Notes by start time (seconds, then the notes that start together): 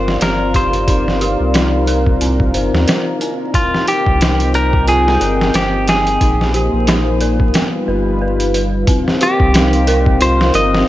Already playing: G1 C4 D#4 F4 A#4 C5 D5 F5 G5
0.08 snare
0.21 G1 A#4 C5, snare, closed hi-hat
0.54 G4 C5, kick, closed hi-hat
0.73 closed hi-hat
0.88 D#4, kick, closed hi-hat
1.08 snare
1.21 G4, closed hi-hat
1.40 C2
1.54 D#4, snare, closed hi-hat
1.87 A#4, closed hi-hat
2.06 kick
2.21 C4, closed hi-hat
2.40 kick
2.54 G1 C5, closed hi-hat
2.73 D#2, snare
2.88 C5, snare, closed hi-hat
3.21 C4, closed hi-hat
3.54 C4 F4 G5, kick, closed hi-hat
3.74 snare
3.87 G4, closed hi-hat
4.06 C2, kick
4.21 D#4, snare, closed hi-hat
4.40 closed hi-hat
4.54 A#4, closed hi-hat
4.73 kick
4.88 F4 G#4, closed hi-hat
5.08 snare
5.21 G1 A#4, closed hi-hat
5.41 snare
5.54 G1 G4 C5, snare, closed hi-hat
5.88 G#4 G5, snare, closed hi-hat
6.07 closed hi-hat
6.21 A#1 A#3 D#4 C5, kick, closed hi-hat
6.41 snare
6.54 G4, closed hi-hat
6.73 A#1
6.87 D#4, snare, closed hi-hat
7.21 A#4, closed hi-hat
7.40 kick
7.54 G3 B3 F4 B4, snare, closed hi-hat
7.88 G1 B4
8.21 B4
8.40 closed hi-hat
8.54 B4, closed hi-hat
8.87 C4 D#4 A#4 C5 F5, kick, closed hi-hat
9.08 snare
9.21 G4, closed hi-hat
9.40 C2, kick
9.54 D#4, snare, closed hi-hat
9.73 closed hi-hat
9.87 A#4, closed hi-hat
10.06 kick
10.21 F4 C5, closed hi-hat
10.41 snare
10.54 G1 A#4 D#5, closed hi-hat
10.75 snare